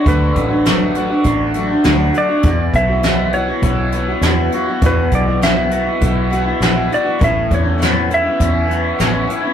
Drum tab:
HH |xxxxxxxx|xxxxxxxx|xxxxxxxx|xxxxxxxx|
SD |--o---o-|--o---o-|--o---o-|--o---o-|
BD |oo--o---|oo--o---|oo--o---|oo--o---|